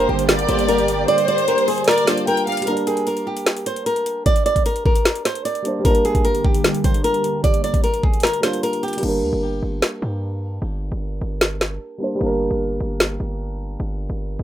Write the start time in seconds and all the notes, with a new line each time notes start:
Already playing: D3 G3 A#3 D4 G4 A#4 C5
0.09 G1 G4
0.19 closed hi-hat
0.29 D5, snare, closed hi-hat
0.39 closed hi-hat
0.48 G1 C5, closed hi-hat
0.59 closed hi-hat
0.69 A#4, closed hi-hat
0.78 closed hi-hat
0.88 closed hi-hat
1.08 C5 D5, closed hi-hat
1.18 closed hi-hat
1.28 D5, closed hi-hat
1.38 closed hi-hat
1.48 A#4, closed hi-hat
1.58 closed hi-hat
1.68 G#4, open hi-hat
1.78 closed hi-hat
1.84 A#4 D5, snare, closed hi-hat
1.91 closed hi-hat
1.98 closed hi-hat
2.05 G3 A#3 D4 C5, snare, closed hi-hat
2.10 F4
2.18 closed hi-hat
2.27 A#4 G5, closed hi-hat
2.37 closed hi-hat
2.47 G4 F5, closed hi-hat
2.52 closed hi-hat
2.57 closed hi-hat
2.61 G3 A#3, closed hi-hat
2.67 D4 A#4, closed hi-hat
2.73 A#4
2.77 closed hi-hat
2.87 G#4, closed hi-hat
2.97 closed hi-hat
3.07 A#4, closed hi-hat
3.17 closed hi-hat
3.27 G4
3.37 closed hi-hat
3.46 snare, closed hi-hat
3.57 closed hi-hat
3.66 C5, closed hi-hat
3.76 closed hi-hat
3.86 A#4, closed hi-hat
3.96 closed hi-hat
4.06 closed hi-hat
4.26 D5, kick, closed hi-hat
4.36 closed hi-hat
4.46 D5, closed hi-hat
4.56 kick, closed hi-hat
4.66 A#4, closed hi-hat
4.76 closed hi-hat
4.86 A#4, kick
4.95 closed hi-hat
5.05 snare, closed hi-hat
5.16 closed hi-hat
5.25 C5, snare, closed hi-hat
5.35 closed hi-hat
5.45 D5, closed hi-hat
5.55 closed hi-hat
5.62 G3 A#3 D4, closed hi-hat
5.68 C5
5.79 G3 A#3
5.85 D3 G3 A#3 D4 G4 A#4, kick, closed hi-hat
5.91 A#4
5.95 closed hi-hat
6.05 G#4, closed hi-hat
6.15 kick, closed hi-hat
6.25 A#4, closed hi-hat
6.35 closed hi-hat
6.45 G4, kick
6.54 closed hi-hat
6.64 snare, closed hi-hat
6.75 closed hi-hat
6.84 C5, kick, closed hi-hat
6.94 closed hi-hat
7.04 A#4, closed hi-hat
7.14 closed hi-hat
7.24 closed hi-hat
7.44 D5, kick, closed hi-hat
7.54 closed hi-hat
7.64 D5, closed hi-hat
7.74 kick, closed hi-hat
7.84 A#4, closed hi-hat
7.94 closed hi-hat
8.03 G#4, kick
8.14 closed hi-hat
8.20 A#4, snare, closed hi-hat
8.27 closed hi-hat
8.34 closed hi-hat
8.40 G3 A#3 D4 C5, snare, closed hi-hat
8.46 F4
8.53 closed hi-hat
8.63 A#4, closed hi-hat
8.73 closed hi-hat
8.83 G4, closed hi-hat
8.88 closed hi-hat
8.93 closed hi-hat
8.97 G3 A#3, closed hi-hat
9.03 G1 D4, crash
9.08 A#4
9.23 D2
9.33 G1
9.62 G1
9.82 snare
10.02 G2
10.62 G1
10.92 G1
11.21 G1
11.41 snare
11.61 snare
11.98 G3 A#3 D4
12.04 C5
12.15 G3 A#3
12.21 G1 D4
12.26 A#4
12.51 G1
12.80 G1
13.00 snare
13.20 G1
13.80 G1
14.10 G1
14.39 G1